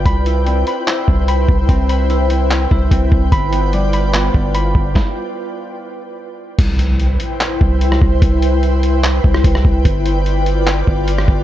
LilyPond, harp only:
\new Staff \with { instrumentName = "Harp" } { \time 4/4 \key c \major \tempo 4 = 147 b''8 e'8 c'8 b''8 e'4 b''4 | c'8 b''8 e'8 c'4 e'8 c'4 | b''8 b8 g8 b''8 b4 b''4~ | b''2 r2 |
r1 | r1 | r1 | }